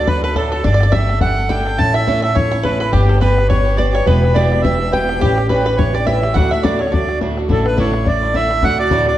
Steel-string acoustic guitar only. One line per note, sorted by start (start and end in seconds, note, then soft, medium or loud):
0.06 0.23 F#3 medium
0.06 0.22 A3 medium
0.06 0.23 D4 medium
0.06 0.20 A4 medium
0.22 0.34 F#3 soft
0.22 0.35 A3 soft
0.22 0.35 D4 soft
0.22 0.35 A4 soft
0.34 0.51 D2 medium
0.34 0.51 A2 medium
0.34 0.52 F#3 medium
0.34 0.50 A3 medium
0.34 0.52 D4 medium
0.34 0.49 A4 medium
0.51 0.63 F#3 soft
0.51 0.64 A3 soft
0.51 0.63 D4 soft
0.51 0.64 A4 medium
0.63 0.80 G3 medium
0.63 0.80 A3 medium
0.63 0.80 D4 medium
0.63 0.79 A4 medium
0.80 0.93 A3 soft
0.80 0.92 D4 soft
0.80 0.93 A4 soft
0.93 1.09 G3 medium
0.93 1.08 A3 loud
0.93 1.09 D4 medium
0.93 1.07 A4 medium
1.08 1.21 A3 soft
1.08 1.20 D4 soft
1.08 1.21 A4 soft
1.20 1.37 G3 medium
1.20 1.37 A3 medium
1.20 1.37 D4 medium
1.20 1.35 A4 medium
1.36 1.49 A3 soft
1.36 1.48 D4 soft
1.36 1.49 A4 medium
1.49 1.65 G3 medium
1.49 1.65 A3 medium
1.49 1.66 D4 medium
1.49 1.64 A4 medium
1.65 1.77 A3 soft
1.65 1.78 D4 soft
1.65 1.78 A4 medium
1.78 1.94 A2 medium
1.78 1.94 A3 medium
1.78 1.95 C#4 medium
1.78 1.95 E4 medium
1.78 1.93 A4 medium
1.94 2.06 C#4 soft
1.94 2.07 E4 soft
1.94 2.07 A4 soft
2.07 2.23 A2 medium
2.07 2.23 A3 medium
2.07 2.23 C#4 loud
2.07 2.23 E4 loud
2.07 2.21 A4 loud
2.23 2.35 C#4 soft
2.23 2.36 E4 medium
2.23 2.35 A4 medium
2.35 2.52 A3 soft
2.35 2.52 C#4 medium
2.35 2.52 E4 medium
2.35 2.50 A4 medium
2.51 2.63 C#4 soft
2.51 2.64 E4 soft
2.51 2.64 A4 soft
2.63 2.80 A2 medium
2.63 2.80 A3 medium
2.63 2.81 C#4 medium
2.63 2.80 E4 medium
2.63 2.79 A4 medium
2.80 2.92 C#4 soft
2.80 2.93 E4 soft
2.80 2.93 A4 soft
2.92 3.09 G3 medium
2.92 3.09 B3 medium
2.92 3.08 D4 medium
2.92 3.06 G4 medium
3.08 3.20 B3 soft
3.08 3.21 D4 soft
3.08 3.21 G4 soft
3.20 3.37 G3 medium
3.20 3.38 B3 medium
3.20 3.37 D4 medium
3.20 3.35 G4 loud
3.36 3.48 B3 soft
3.36 3.49 D4 soft
3.36 3.50 G4 soft
3.48 3.65 G3 medium
3.48 3.66 B3 medium
3.48 3.65 D4 medium
3.48 3.63 G4 medium
3.65 3.76 B3 soft
3.65 3.77 D4 soft
3.65 3.78 G4 medium
3.77 3.94 G3 medium
3.77 3.94 B3 medium
3.77 3.93 D4 medium
3.77 3.92 G4 medium
3.93 4.05 B3 soft
3.93 4.06 D4 soft
3.93 4.06 G4 medium
4.05 4.22 E2 medium
4.05 4.22 B2 medium
4.05 4.23 E3 medium
4.05 4.23 B3 medium
4.05 4.22 D4 medium
4.05 4.20 G4 medium
4.21 4.34 E3 soft
4.21 4.34 B3 soft
4.21 4.35 D4 soft
4.21 4.35 G4 soft
4.34 4.51 E2 medium
4.34 4.51 B2 medium
4.34 4.51 E3 loud
4.34 4.51 B3 medium
4.34 4.50 D4 loud
4.34 4.49 G4 medium
4.50 4.61 E3 soft
4.50 4.62 B3 soft
4.50 4.63 D4 medium
4.50 4.63 G4 medium
4.62 4.79 E3 medium
4.62 4.79 B3 medium
4.62 4.79 D4 medium
4.62 4.77 G4 medium
4.78 4.91 E3 soft
4.78 4.91 B3 soft
4.78 4.92 D4 soft
4.78 4.92 G4 soft
4.91 5.08 E2 medium
4.91 5.08 B2 medium
4.91 5.08 E3 medium
4.91 5.09 B3 medium
4.91 5.08 D4 medium
4.91 5.07 G4 medium
5.08 5.20 E3 soft
5.08 5.21 B3 soft
5.08 5.22 D4 medium
5.08 5.21 G4 soft
5.20 5.37 A2 medium
5.20 5.37 E3 medium
5.20 5.38 G3 medium
5.20 5.36 C#4 medium
5.20 5.35 G4 medium
5.36 5.49 G3 soft
5.36 5.50 C#4 soft
5.36 5.49 G4 medium
5.50 5.66 A2 medium
5.50 5.66 E3 medium
5.50 5.66 G3 medium
5.50 5.65 C#4 medium
5.50 5.63 G4 medium
5.65 5.77 G3 soft
5.65 5.79 C#4 soft
5.65 5.78 G4 medium
5.77 5.94 E3 medium
5.77 5.94 G3 medium
5.77 5.94 C#4 medium
5.77 5.92 G4 medium
5.93 6.06 G3 soft
5.93 6.07 C#4 soft
5.93 6.06 G4 medium
6.06 6.22 A2 medium
6.06 6.23 E3 medium
6.06 6.23 G3 medium
6.06 6.23 C#4 medium
6.06 6.22 G4 medium
6.23 6.36 G3 soft
6.23 6.36 C#4 soft
6.23 6.35 G4 medium
6.35 6.51 D2 medium
6.35 6.51 A2 medium
6.35 6.52 D3 medium
6.35 6.52 A3 medium
6.35 6.51 D4 medium
6.35 6.50 F#4 medium
6.51 6.64 D3 soft
6.51 6.64 A3 soft
6.51 6.64 D4 soft
6.51 6.64 F#4 soft
6.64 6.80 D2 medium
6.64 6.80 A2 medium
6.64 6.80 D3 medium
6.64 6.80 A3 medium
6.64 6.79 D4 medium
6.64 6.78 F#4 loud
6.79 6.90 D3 soft
6.79 6.92 A3 soft
6.79 6.92 D4 soft
6.79 6.92 F#4 soft
6.92 7.08 D3 medium
6.92 7.09 A3 medium
6.92 7.08 D4 soft
6.92 7.07 F#4 medium
7.08 7.21 D3 soft
7.08 7.21 A3 soft
7.08 7.21 D4 medium
7.08 7.21 F#4 medium
7.21 7.37 D2 medium
7.21 7.37 A2 medium
7.21 7.37 D3 medium
7.21 7.38 A3 medium
7.21 7.37 D4 medium
7.21 7.36 F#4 medium
7.37 7.48 D3 soft
7.37 7.48 A3 medium
7.37 7.49 D4 medium
7.37 7.49 F#4 medium
7.48 7.65 A2 medium
7.48 7.65 D3 medium
7.48 7.65 A3 medium
7.48 7.65 D4 medium
7.48 7.64 E4 medium
7.65 7.77 A3 soft
7.65 7.77 D4 soft
7.65 7.77 E4 medium
7.77 7.93 A2 medium
7.77 7.94 D3 medium
7.77 7.94 A3 medium
7.77 7.93 D4 loud
7.77 7.92 E4 medium
7.93 8.05 A3 soft
7.93 8.06 D4 medium
7.93 8.06 E4 medium
8.05 8.21 D3 medium
8.05 8.22 A3 medium
8.05 8.22 D4 medium
8.05 8.20 E4 medium
8.22 8.34 A3 soft
8.22 8.34 D4 medium
8.22 8.34 E4 soft
8.34 8.50 A2 medium
8.34 8.50 D3 medium
8.34 8.51 A3 medium
8.34 8.50 D4 medium
8.34 8.48 E4 medium
8.50 8.63 A3 soft
8.50 8.63 D4 soft
8.50 8.62 E4 medium
8.62 8.79 D2 medium
8.62 8.79 A2 medium
8.62 8.79 D3 medium
8.62 8.79 A3 medium
8.62 8.79 D4 medium
8.62 8.77 F#4 medium
8.79 8.90 D3 soft
8.79 8.91 A3 medium
8.79 8.91 D4 soft
8.79 8.91 F#4 soft
8.90 9.07 D2 medium
8.90 9.07 A2 loud
8.90 9.07 D3 medium
8.90 9.07 A3 medium
8.90 9.07 D4 medium
8.90 9.05 F#4 medium
9.06 9.18 D3 soft
9.06 9.18 A3 medium
9.06 9.18 D4 soft
9.06 9.18 F#4 soft